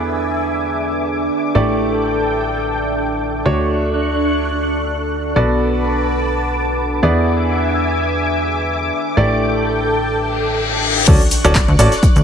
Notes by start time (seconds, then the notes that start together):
Already playing: E2 B3 D4 E4 G#4 B4 D5 E5 F#5 G#5 D6
0.32 E5
1.55 A1 A3 E4 G4 A4 D5 G5
1.66 G4
2.31 A4
3.46 D2 A3 D4 F#4 C#5 C#6 F#6
3.91 F#5
5.36 B1 B3 F#4 A4 B4 D5 A5 D6
5.74 B4
7.03 E2 B3 E4 G#4 D5 E5 G#5 D6
7.16 G#4
7.99 E5
9.17 A1 A3 E4 G4 A4 D5 G5
9.41 G4
9.82 A4
10.12 reverse cymbal
11.07 D2 C#4 F#4 A4 D5 C#6 F#6, kick, closed hi-hat, crash, sub drop, shaker
11.21 closed hi-hat, shaker
11.31 closed hi-hat, open hi-hat, shaker
11.45 D1 C#4 F#4 A4 D5, closed hi-hat, shaker
11.55 kick, snare, clap, closed hi-hat, shaker
11.68 D2, closed hi-hat
11.79 A1 C#4 F#4 A4 D5, closed hi-hat, open hi-hat, shaker
11.92 snare, closed hi-hat, shaker
12.03 kick, closed hi-hat, shaker
12.16 D2, closed hi-hat, shaker